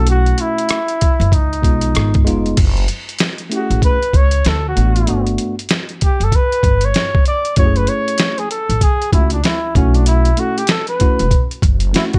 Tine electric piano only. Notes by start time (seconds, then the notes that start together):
Already playing: A3 C#4 E4 F#4
1.62 G#3 B3 D#4 F4
2.25 G#3 B3 D#4 F4
3.50 A3 C#4 E4 G4
3.59 G#4
4.75 A3 B3 D4 F#4
5.06 A3 B3 D4 F#4
7.57 A3 C#4 E4 F#4
7.66 G#4
9.12 A3 C#4 E4 F#4
9.75 A3 C#4 E4 F#4
10.37 A3 C#4 E4 A4
10.99 A3 C#4 E4 F#4
11.93 A3 C#4 E4 F#4